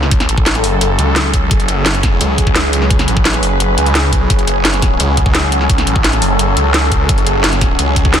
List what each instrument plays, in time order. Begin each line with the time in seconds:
Already playing: detuned saw bass C#2, synth drone F#3 C#4 G#4 A4
0.03 snare
0.11 kick, closed hi-hat
0.20 snare, closed hi-hat
0.29 detuned saw bass A1, closed hi-hat
0.38 kick
0.46 snare, closed hi-hat
0.55 snare, closed hi-hat
0.64 detuned saw bass F#1, open hi-hat
0.81 detuned saw bass F#1, closed hi-hat
0.99 detuned saw bass C#2, closed hi-hat
1.16 snare, closed hi-hat
1.34 kick, closed hi-hat
1.51 detuned saw bass F#1, synth drone B4, kick, closed hi-hat
1.60 closed hi-hat
1.68 closed hi-hat
1.86 detuned saw bass F#1, snare, closed hi-hat
1.95 snare, closed hi-hat
2.03 kick, snare, closed hi-hat
2.21 detuned saw bass C#2, closed hi-hat
2.38 kick, closed hi-hat
2.47 kick
2.56 snare, closed hi-hat
2.73 closed hi-hat
2.82 snare
2.90 kick, closed hi-hat
2.99 snare, closed hi-hat
3.08 detuned saw bass A1, closed hi-hat
3.17 kick
3.25 snare, closed hi-hat
3.34 snare, closed hi-hat
3.43 detuned saw bass F#1, open hi-hat
3.60 detuned saw bass F#1, closed hi-hat
3.78 detuned saw bass C#2, closed hi-hat
3.86 closed hi-hat
3.95 snare, closed hi-hat
4.13 kick, closed hi-hat
4.30 detuned saw bass F#1, synth drone A4, kick, closed hi-hat
4.39 closed hi-hat
4.47 closed hi-hat
4.65 detuned saw bass F#1, snare, closed hi-hat
4.74 snare, closed hi-hat
4.82 kick, snare, closed hi-hat
5.00 detuned saw bass C#2, closed hi-hat
5.17 kick, closed hi-hat
5.26 kick
5.35 snare, closed hi-hat
5.52 closed hi-hat
5.61 snare
5.70 kick, closed hi-hat
5.78 snare, closed hi-hat
5.87 detuned saw bass A1, closed hi-hat
5.96 kick
6.04 snare, closed hi-hat
6.13 snare, closed hi-hat
6.22 detuned saw bass F#1, open hi-hat
6.39 detuned saw bass F#1, closed hi-hat
6.57 detuned saw bass C#2, closed hi-hat
6.74 snare, closed hi-hat
6.92 kick, closed hi-hat
7.09 detuned saw bass F#1, synth drone C#5, kick, closed hi-hat
7.18 closed hi-hat
7.27 closed hi-hat
7.44 detuned saw bass F#1, snare, closed hi-hat
7.53 snare, closed hi-hat
7.61 kick, snare, closed hi-hat
7.79 detuned saw bass C#2, closed hi-hat
7.96 kick, closed hi-hat
8.05 kick
8.14 snare, closed hi-hat